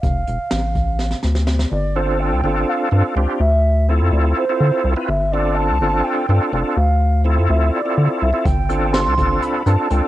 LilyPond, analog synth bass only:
\new Staff \with { instrumentName = "Analog synth bass" } { \clef bass \time 7/8 \key g \dorian \tempo 4 = 125 f,,8 e,,16 r16 a,,4. d,4 | g,,4~ g,,16 c,16 g,,8 r8 g,16 r16 cis,16 r16 | d,4~ d,16 f,16 d,8 r8 d16 r16 c,16 r16 | g,,4~ g,,16 c,16 g,,8 r8 g,16 r16 f,,16 r16 |
d,4~ d,16 f,16 d,8 r8 d16 r16 c,16 r16 | g,,4~ g,,16 c,16 g,,8 r8 g,16 r16 cis,16 r16 | }